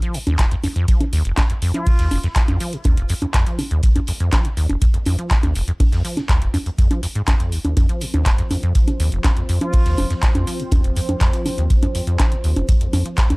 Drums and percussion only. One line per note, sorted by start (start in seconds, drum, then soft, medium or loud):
0.02 closed hi-hat soft
0.14 closed hi-hat medium
0.14 open hi-hat medium
0.27 closed hi-hat soft
0.27 high conga medium
0.39 kick loud
0.39 snare loud
0.39 clap loud
0.39 closed hi-hat medium
0.51 closed hi-hat soft
0.64 closed hi-hat medium
0.64 open hi-hat medium
0.64 high conga medium
0.76 closed hi-hat soft
0.88 kick loud
0.88 closed hi-hat medium
1.01 closed hi-hat soft
1.01 high conga medium
1.13 closed hi-hat medium
1.13 open hi-hat loud
1.25 closed hi-hat soft
1.37 kick loud
1.37 snare loud
1.37 clap loud
1.37 closed hi-hat medium
1.37 high conga medium
1.50 closed hi-hat soft
1.62 closed hi-hat medium
1.62 open hi-hat loud
1.74 closed hi-hat soft
1.74 high conga medium
1.87 kick loud
1.87 closed hi-hat medium
1.87 open hi-hat medium
1.99 snare soft
1.99 closed hi-hat soft
2.11 closed hi-hat medium
2.11 open hi-hat loud
2.11 high conga medium
2.24 snare soft
2.24 closed hi-hat soft
2.36 kick loud
2.36 snare loud
2.36 clap loud
2.36 closed hi-hat medium
2.48 closed hi-hat soft
2.48 high conga medium
2.60 closed hi-hat medium
2.60 open hi-hat medium
2.73 closed hi-hat soft
2.84 kick loud
2.84 closed hi-hat medium
2.84 high conga medium
2.97 closed hi-hat soft
3.09 closed hi-hat medium
3.09 open hi-hat loud
3.22 closed hi-hat soft
3.22 high conga medium
3.34 kick loud
3.34 snare loud
3.34 clap loud
3.34 closed hi-hat medium
3.46 closed hi-hat soft
3.59 closed hi-hat medium
3.59 open hi-hat loud
3.59 high conga medium
3.71 closed hi-hat soft
3.83 kick loud
3.83 closed hi-hat medium
3.96 closed hi-hat soft
3.96 high conga medium
4.07 closed hi-hat medium
4.07 open hi-hat loud
4.20 closed hi-hat soft
4.33 kick loud
4.33 snare loud
4.33 clap loud
4.33 closed hi-hat medium
4.33 high conga medium
4.45 closed hi-hat soft
4.57 closed hi-hat medium
4.57 open hi-hat medium
4.69 closed hi-hat soft
4.69 high conga medium
4.82 kick loud
4.82 closed hi-hat medium
4.94 closed hi-hat soft
5.06 closed hi-hat medium
5.06 open hi-hat loud
5.06 high conga medium
5.19 closed hi-hat soft
5.31 kick loud
5.31 snare loud
5.31 clap loud
5.31 closed hi-hat medium
5.43 closed hi-hat soft
5.43 high conga medium
5.55 closed hi-hat medium
5.55 open hi-hat loud
5.68 closed hi-hat soft
5.80 kick loud
5.80 closed hi-hat medium
5.80 open hi-hat medium
5.80 high conga medium
5.92 snare soft
5.92 closed hi-hat soft
6.05 closed hi-hat medium
6.05 open hi-hat loud
6.17 snare soft
6.17 closed hi-hat soft
6.17 high conga medium
6.29 kick loud
6.29 snare loud
6.29 clap loud
6.29 closed hi-hat medium
6.42 closed hi-hat soft
6.54 closed hi-hat medium
6.54 open hi-hat medium
6.54 high conga medium
6.66 closed hi-hat soft
6.78 kick loud
6.78 closed hi-hat medium
6.91 closed hi-hat soft
6.91 high conga medium
7.03 closed hi-hat medium
7.03 open hi-hat loud
7.15 closed hi-hat soft
7.28 kick loud
7.28 snare loud
7.28 clap loud
7.28 closed hi-hat medium
7.28 high conga medium
7.40 closed hi-hat soft
7.52 closed hi-hat medium
7.52 open hi-hat loud
7.65 closed hi-hat soft
7.65 high conga medium
7.77 kick loud
7.77 closed hi-hat medium
7.77 high conga medium
7.89 closed hi-hat soft
8.01 closed hi-hat medium
8.01 open hi-hat loud
8.14 closed hi-hat soft
8.14 high conga medium
8.26 kick loud
8.26 snare loud
8.26 clap loud
8.26 closed hi-hat medium
8.38 closed hi-hat soft
8.51 closed hi-hat medium
8.51 open hi-hat medium
8.51 high conga medium
8.63 closed hi-hat soft
8.75 kick loud
8.75 closed hi-hat medium
8.88 closed hi-hat soft
8.88 high conga medium
9.00 closed hi-hat medium
9.00 open hi-hat loud
9.12 closed hi-hat soft
9.24 kick loud
9.24 snare loud
9.24 clap loud
9.24 closed hi-hat medium
9.24 high conga medium
9.37 closed hi-hat soft
9.49 closed hi-hat medium
9.49 open hi-hat medium
9.61 closed hi-hat soft
9.61 high conga medium
9.73 kick loud
9.73 closed hi-hat medium
9.73 open hi-hat medium
9.85 snare soft
9.85 closed hi-hat soft
9.97 closed hi-hat medium
9.97 open hi-hat loud
9.97 high conga medium
10.10 snare soft
10.10 closed hi-hat soft
10.23 kick loud
10.23 snare loud
10.23 clap loud
10.23 closed hi-hat medium
10.35 closed hi-hat soft
10.35 high conga medium
10.47 closed hi-hat medium
10.47 open hi-hat medium
10.60 closed hi-hat soft
10.71 kick loud
10.71 closed hi-hat medium
10.71 high conga medium
10.84 closed hi-hat soft
10.96 closed hi-hat medium
10.96 open hi-hat loud
11.09 closed hi-hat soft
11.09 high conga medium
11.20 kick loud
11.20 snare loud
11.20 clap loud
11.20 closed hi-hat medium
11.33 closed hi-hat soft
11.46 closed hi-hat medium
11.46 open hi-hat medium
11.46 high conga medium
11.58 closed hi-hat soft
11.70 kick loud
11.70 closed hi-hat medium
11.83 closed hi-hat soft
11.83 high conga medium
11.95 closed hi-hat medium
11.95 open hi-hat medium
12.07 closed hi-hat soft
12.19 kick loud
12.19 snare loud
12.19 clap loud
12.19 closed hi-hat medium
12.19 high conga medium
12.32 closed hi-hat soft
12.44 closed hi-hat medium
12.44 open hi-hat medium
12.56 closed hi-hat soft
12.56 high conga medium
12.69 kick loud
12.69 closed hi-hat medium
12.81 closed hi-hat soft
12.93 closed hi-hat medium
12.93 open hi-hat loud
12.93 high conga medium
13.06 closed hi-hat soft
13.17 kick loud
13.17 snare loud
13.17 clap loud
13.17 closed hi-hat medium
13.30 closed hi-hat soft
13.30 high conga medium